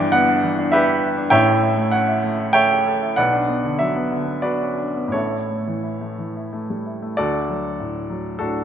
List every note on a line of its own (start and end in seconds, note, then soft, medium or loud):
0.00 1.29 G1 medium
0.00 1.29 G2 medium
0.00 0.21 E3 medium
0.00 0.29 D4 medium
0.00 0.73 E4 medium
0.00 1.35 D5 loud
0.00 0.72 E5 loud
0.00 0.12 G5 loud
0.12 0.37 B3 medium
0.12 0.73 F#5 loud
0.29 0.53 D4 medium
0.44 0.67 E3 medium
0.59 0.82 D4 medium
0.72 0.97 E4 medium
0.72 1.29 G4 medium
0.72 1.29 B4 medium
0.72 1.30 E5 loud
0.88 1.03 D4 medium
1.03 1.26 E4 medium
1.18 1.33 D4 medium
1.30 3.13 A1 medium
1.30 3.14 A2 medium
1.30 1.89 C#5 medium
1.30 1.88 E5 loud
1.30 1.92 G5 loud
1.48 1.72 A4 medium
1.63 1.87 E4 medium
1.77 2.02 A3 medium
1.91 2.17 C#4 medium
1.91 2.54 F#5 medium
2.08 2.33 E4 medium
2.24 2.48 A3 medium
2.40 2.65 E4 medium
2.53 2.80 A4 medium
2.53 3.14 C#5 medium
2.53 3.14 E5 medium
2.53 3.17 G5 loud
2.71 2.87 G4 soft
2.87 3.12 A4 soft
3.02 3.18 E4 medium
3.16 5.09 B1 medium
3.16 3.76 B4 medium
3.16 3.76 D5 medium
3.16 3.79 F#5 loud
3.32 3.58 D4 medium
3.48 3.74 B3 medium
3.64 3.89 D3 soft
3.79 4.06 F#3 soft
3.79 4.43 E5 medium
3.95 4.21 B3 medium
4.11 4.37 D3 soft
4.26 4.53 B3 soft
4.42 4.71 D4 medium
4.42 5.08 F#4 medium
4.42 5.09 B4 medium
4.42 5.12 D5 medium
4.62 4.78 C#4 soft
4.78 5.06 D4 soft
4.96 5.14 B3 soft
5.08 7.12 A2 medium
5.12 7.14 A1 soft
5.12 5.30 E4 medium
5.12 6.48 A4 medium
5.12 6.51 C#5 medium
5.32 5.59 E4 soft
5.50 5.77 A3 soft
5.67 5.94 E3 soft
5.83 6.11 E4 soft
6.01 6.29 A3 soft
6.18 6.46 E3 soft
6.37 6.63 E4 soft
6.53 6.80 A3 soft
6.70 6.87 G3 soft
6.86 7.12 E4 soft
7.02 7.18 A3 soft
7.17 8.64 D2 medium
7.17 8.36 F#4 medium
7.17 8.36 A4 medium
7.17 8.40 D5 medium
7.49 7.98 F#3 soft
7.80 8.29 A2 soft
8.10 8.59 F#3 soft
8.39 8.64 A2 soft
8.39 8.64 D4 soft
8.39 8.64 F#4 medium
8.39 8.64 A4 medium